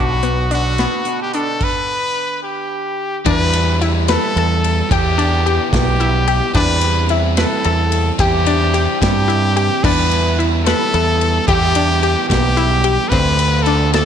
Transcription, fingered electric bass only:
0.00 0.85 B1 medium
3.26 4.16 E2 loud
4.36 4.81 E2 loud
4.91 5.58 E2 loud
5.73 6.40 B1 loud
6.54 7.44 E2 loud
7.65 8.10 E2 loud
8.19 8.86 E2 loud
9.02 9.68 G2 loud
9.84 10.72 E2 loud
10.94 11.38 E2 loud
11.48 12.14 E2 loud
12.30 12.97 B1 loud
13.12 14.01 D2 loud

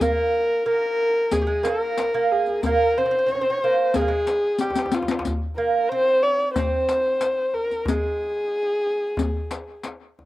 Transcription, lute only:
0.02 0.63 A#3 medium
0.66 1.34 A#3 medium
1.33 1.40 G#3 medium
1.42 1.46 G3 medium
1.47 1.66 G#3 medium
1.63 2.13 A#3 medium
2.14 2.60 A#3 medium
2.66 2.97 A#3 medium
2.98 3.04 C4 medium
3.06 3.10 C4 medium
3.11 3.17 C4 medium
3.19 3.25 C4 medium
3.26 3.34 C4 medium
3.35 3.40 C4 medium
3.41 3.49 C4 medium
3.50 3.57 C4 medium
3.64 3.97 A#3 medium
3.95 4.02 G#3 medium
4.01 4.08 A#3 medium
4.08 4.60 G#3 medium
4.61 5.22 G3 medium
5.58 5.91 A#3 medium
5.92 6.57 C4 medium
6.58 7.92 C4 medium
7.88 9.80 G#3 medium

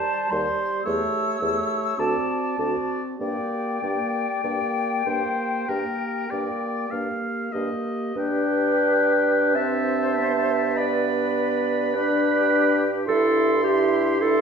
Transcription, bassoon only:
0.31 0.47 D#2 soft
0.86 1.02 E2 soft
1.41 1.57 E2 soft
1.98 2.14 D2 soft
2.58 2.74 D2 soft
3.21 3.37 G2 soft
3.83 3.99 G2 soft
4.44 4.60 G2 soft
5.07 5.23 G2 soft
5.69 5.85 G2 soft
6.32 6.48 G2 soft
6.92 7.08 G2 soft
7.55 7.71 G2 soft
8.16 13.04 G2 soft
13.08 14.41 G2 medium

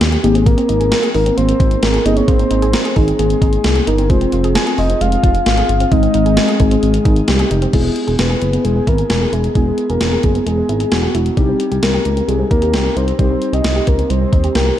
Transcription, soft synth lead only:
0.24 0.36 G4 medium
0.35 0.46 G#4 medium
0.46 1.10 A#4 loud
1.15 1.36 A#4 medium
1.37 1.84 C5 loud
1.83 2.07 A#4 loud
2.05 2.18 D#5 loud
2.17 2.27 C#5 loud
2.28 2.97 C5 loud
2.96 3.18 G#4 medium
3.19 3.88 G#4 loud
3.87 3.98 A#4 medium
3.99 4.11 A#4 medium
4.10 4.55 C5 loud
4.78 5.03 D#5 loud
5.01 5.46 F5 loud
5.46 5.93 F5 loud
5.92 6.62 D#5 loud
6.60 7.28 G#4 medium
7.29 7.76 G4 medium
7.74 8.21 G#4 medium
8.20 8.64 B4 medium
8.65 8.89 G#4 medium
8.88 9.10 A#4 medium
9.11 9.35 A#4 medium
9.33 9.55 G#4 medium
9.56 9.87 G#4 medium
9.90 10.26 A#4 loud
10.24 10.46 G#4 medium
10.47 10.94 G#4 loud
10.92 11.37 F#4 medium
11.38 11.84 G4 loud
11.83 12.30 A#4 loud
12.29 12.50 G#4 medium
12.51 12.72 A#4 loud
12.74 12.98 A#4 loud
12.97 13.19 C5 medium
13.19 13.55 C5 loud
13.53 13.89 D#5 loud
13.87 14.11 A#4 medium
14.10 14.55 C5 loud
14.55 14.79 A#4 loud

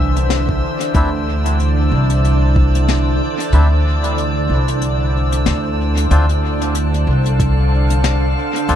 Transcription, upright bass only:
0.00 0.60 C2 medium
0.95 1.89 D2 loud
1.92 3.18 C2 medium
3.53 4.47 D2 loud
4.49 5.46 C2 medium
5.46 6.08 D2 medium
6.11 7.05 D2 loud
7.07 8.34 C2 medium
8.69 8.76 D2 loud

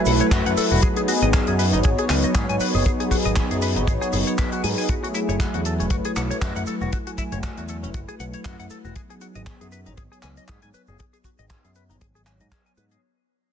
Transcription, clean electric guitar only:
0.07 0.11 F#5 medium
0.21 0.26 C#5 medium
0.32 0.42 F#4 medium
0.46 0.52 F#5 medium
0.57 0.64 A4 medium
0.71 0.80 F#4 medium
0.83 0.87 G#4 medium
0.97 1.00 G#4 medium
1.08 1.12 F#4 medium
1.22 1.28 D#5 medium
1.34 1.40 G#4 medium
1.48 1.53 G#4 medium
1.59 1.66 B4 medium
1.73 1.79 D#4 medium
1.84 1.89 G#4 medium
1.99 2.04 G#4 medium
2.10 2.14 G#5 medium
2.24 2.29 D#5 medium
2.35 2.46 G#4 medium
2.49 2.55 G#5 medium
2.61 2.68 B4 medium
2.75 2.83 G#4 medium
2.86 2.90 G#4 medium
3.00 3.03 G#4 medium
3.11 3.15 F#4 medium
3.25 3.31 D#5 medium
3.37 3.44 G#4 medium
3.51 3.56 G#4 medium
3.62 3.69 B4 medium
3.76 3.82 D#4 medium
3.87 3.92 G#4 medium
4.01 4.07 G#4 loud
4.13 4.17 G#4 medium
4.27 4.33 C#5 medium
4.38 4.49 B4 medium
4.53 4.61 F#4 medium
4.64 4.68 G#5 medium
4.78 4.84 G#5 medium
4.89 4.94 F#4 medium
5.03 5.07 F#4 medium
5.14 5.19 E4 medium
5.29 5.34 C#5 medium
5.40 5.47 F#4 medium
5.54 5.60 F#4 medium
5.66 5.73 A4 medium
5.80 5.85 C#4 medium
5.91 5.95 F#4 medium
6.05 6.11 G#4 loud
6.16 6.21 F#5 medium
6.31 6.36 C#5 medium
6.42 6.52 F#4 medium
6.56 6.62 F#5 medium
6.67 6.74 A4 medium
6.82 6.90 F#4 medium
6.93 6.97 F#4 medium
7.07 7.10 F#4 medium
7.18 7.22 E4 medium
7.32 7.38 C#5 medium
7.44 7.51 F#4 medium
7.58 7.63 F#4 medium
7.69 7.76 A4 medium
7.83 7.89 C#4 medium
7.95 7.99 F#4 medium
8.09 8.14 G#4 medium
8.20 8.24 F#5 medium
8.34 8.40 C#5 medium
8.45 8.56 F#4 medium
8.60 8.65 F#5 medium
8.71 8.78 A4 medium
8.85 8.93 F#4 medium
8.96 9.00 G#4 medium
9.10 9.14 G#4 medium
9.21 9.26 F#4 medium
9.35 9.41 D#5 medium
9.47 9.54 G#4 medium
9.61 9.67 G#4 medium
9.72 9.79 B4 medium
9.86 9.92 D#4 medium
9.97 10.02 G#4 medium
10.12 10.17 G#4 medium
10.23 10.27 G#5 medium
10.37 10.43 D#5 medium
10.48 10.59 G#4 medium
10.63 10.68 G#5 medium
10.74 10.81 B4 medium
10.88 10.97 G#4 medium
10.99 11.04 G#4 medium
11.13 11.17 G#4 medium
11.25 11.29 F#4 medium
11.39 11.45 D#5 medium
11.50 11.57 G#4 medium
11.64 11.70 G#4 medium
11.76 11.83 B4 medium
11.90 11.95 D#4 medium
12.01 12.05 G#4 medium
12.15 12.21 G#4 medium
12.26 12.31 G#5 medium
12.41 12.46 D#5 medium
12.52 12.63 G#4 medium
12.66 12.72 G#5 medium
12.77 12.84 B4 medium
12.91 13.00 G#4 medium

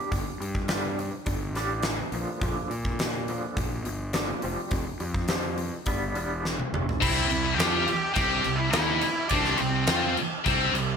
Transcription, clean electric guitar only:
0.11 0.37 G3 medium
0.11 0.37 D4 medium
0.41 0.66 G3 medium
0.41 0.66 D4 medium
0.68 0.96 G3 medium
0.68 0.96 D4 medium
0.68 0.96 G4 medium
0.98 1.24 G3 medium
0.98 1.24 D4 medium
1.26 1.52 G3 medium
1.26 1.52 D4 medium
1.56 1.83 G3 medium
1.56 1.83 D4 medium
1.56 1.83 G4 medium
1.85 2.10 G3 medium
1.85 2.11 D4 medium
2.13 2.40 A#2 medium
2.13 2.41 D3 medium
2.13 2.41 F3 medium
2.42 2.69 A#2 medium
2.42 2.70 D3 medium
2.42 2.69 F3 medium
2.70 2.96 A#2 medium
2.70 2.97 F3 medium
3.01 3.26 A#2 medium
3.01 3.26 F3 medium
3.29 3.55 A#2 medium
3.29 3.56 D3 medium
3.29 3.56 F3 medium
3.56 3.83 A#2 medium
3.56 3.83 F3 medium
3.86 4.12 A#2 medium
3.86 4.12 F3 medium
4.13 4.41 A#2 medium
4.13 4.42 D3 medium
4.13 4.41 F3 medium
4.43 4.70 F3 medium
4.43 4.70 G3 medium
4.43 4.71 C4 medium
4.71 4.98 F3 medium
4.71 4.98 G3 medium
5.00 5.26 F3 medium
5.00 5.27 G3 medium
5.29 5.56 F3 medium
5.29 5.56 G3 medium
5.29 5.57 C4 medium
5.57 5.84 F3 medium
5.57 5.84 G3 medium
5.86 6.14 G3 medium
5.86 6.14 B3 medium
5.86 6.14 D4 medium
6.15 6.43 G3 medium
6.15 6.43 B3 medium
6.15 6.43 D4 medium
6.45 6.71 G3 medium
6.45 6.71 D4 medium
6.74 6.99 G3 medium
6.74 7.00 D4 medium

